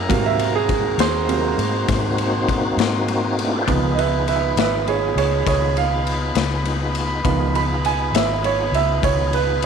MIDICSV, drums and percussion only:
0, 0, Header, 1, 2, 480
1, 0, Start_track
1, 0, Tempo, 595238
1, 79, Time_signature, 12, 3, 24, 8
1, 7788, End_track
2, 0, Start_track
2, 0, Title_t, "Drums"
2, 79, Note_on_c, 9, 36, 105
2, 83, Note_on_c, 9, 51, 83
2, 159, Note_off_c, 9, 36, 0
2, 164, Note_off_c, 9, 51, 0
2, 317, Note_on_c, 9, 51, 65
2, 398, Note_off_c, 9, 51, 0
2, 555, Note_on_c, 9, 51, 62
2, 557, Note_on_c, 9, 36, 75
2, 636, Note_off_c, 9, 51, 0
2, 638, Note_off_c, 9, 36, 0
2, 797, Note_on_c, 9, 51, 85
2, 808, Note_on_c, 9, 38, 110
2, 878, Note_off_c, 9, 51, 0
2, 889, Note_off_c, 9, 38, 0
2, 1040, Note_on_c, 9, 51, 68
2, 1120, Note_off_c, 9, 51, 0
2, 1280, Note_on_c, 9, 51, 58
2, 1361, Note_off_c, 9, 51, 0
2, 1519, Note_on_c, 9, 51, 88
2, 1521, Note_on_c, 9, 36, 108
2, 1531, Note_on_c, 9, 38, 35
2, 1600, Note_off_c, 9, 51, 0
2, 1601, Note_off_c, 9, 36, 0
2, 1611, Note_off_c, 9, 38, 0
2, 1760, Note_on_c, 9, 51, 57
2, 1840, Note_off_c, 9, 51, 0
2, 2004, Note_on_c, 9, 36, 74
2, 2007, Note_on_c, 9, 51, 61
2, 2085, Note_off_c, 9, 36, 0
2, 2088, Note_off_c, 9, 51, 0
2, 2247, Note_on_c, 9, 51, 69
2, 2258, Note_on_c, 9, 38, 99
2, 2327, Note_off_c, 9, 51, 0
2, 2339, Note_off_c, 9, 38, 0
2, 2486, Note_on_c, 9, 51, 57
2, 2566, Note_off_c, 9, 51, 0
2, 2731, Note_on_c, 9, 51, 57
2, 2812, Note_off_c, 9, 51, 0
2, 2965, Note_on_c, 9, 36, 90
2, 2967, Note_on_c, 9, 51, 75
2, 3046, Note_off_c, 9, 36, 0
2, 3048, Note_off_c, 9, 51, 0
2, 3214, Note_on_c, 9, 51, 59
2, 3294, Note_off_c, 9, 51, 0
2, 3449, Note_on_c, 9, 51, 57
2, 3529, Note_off_c, 9, 51, 0
2, 3687, Note_on_c, 9, 51, 76
2, 3698, Note_on_c, 9, 38, 108
2, 3768, Note_off_c, 9, 51, 0
2, 3779, Note_off_c, 9, 38, 0
2, 3931, Note_on_c, 9, 51, 55
2, 4012, Note_off_c, 9, 51, 0
2, 4175, Note_on_c, 9, 51, 60
2, 4256, Note_off_c, 9, 51, 0
2, 4408, Note_on_c, 9, 36, 105
2, 4410, Note_on_c, 9, 51, 85
2, 4422, Note_on_c, 9, 38, 31
2, 4488, Note_off_c, 9, 36, 0
2, 4491, Note_off_c, 9, 51, 0
2, 4502, Note_off_c, 9, 38, 0
2, 4650, Note_on_c, 9, 51, 54
2, 4731, Note_off_c, 9, 51, 0
2, 4892, Note_on_c, 9, 51, 55
2, 4973, Note_off_c, 9, 51, 0
2, 5122, Note_on_c, 9, 51, 71
2, 5133, Note_on_c, 9, 38, 85
2, 5203, Note_off_c, 9, 51, 0
2, 5214, Note_off_c, 9, 38, 0
2, 5365, Note_on_c, 9, 51, 60
2, 5446, Note_off_c, 9, 51, 0
2, 5602, Note_on_c, 9, 51, 54
2, 5683, Note_off_c, 9, 51, 0
2, 5844, Note_on_c, 9, 36, 101
2, 5846, Note_on_c, 9, 51, 71
2, 5925, Note_off_c, 9, 36, 0
2, 5927, Note_off_c, 9, 51, 0
2, 6090, Note_on_c, 9, 51, 52
2, 6170, Note_off_c, 9, 51, 0
2, 6327, Note_on_c, 9, 51, 56
2, 6407, Note_off_c, 9, 51, 0
2, 6569, Note_on_c, 9, 51, 81
2, 6580, Note_on_c, 9, 38, 97
2, 6649, Note_off_c, 9, 51, 0
2, 6661, Note_off_c, 9, 38, 0
2, 6807, Note_on_c, 9, 51, 58
2, 6888, Note_off_c, 9, 51, 0
2, 7050, Note_on_c, 9, 51, 55
2, 7131, Note_off_c, 9, 51, 0
2, 7284, Note_on_c, 9, 36, 107
2, 7289, Note_on_c, 9, 51, 84
2, 7364, Note_off_c, 9, 36, 0
2, 7369, Note_off_c, 9, 51, 0
2, 7524, Note_on_c, 9, 51, 57
2, 7604, Note_off_c, 9, 51, 0
2, 7760, Note_on_c, 9, 51, 58
2, 7788, Note_off_c, 9, 51, 0
2, 7788, End_track
0, 0, End_of_file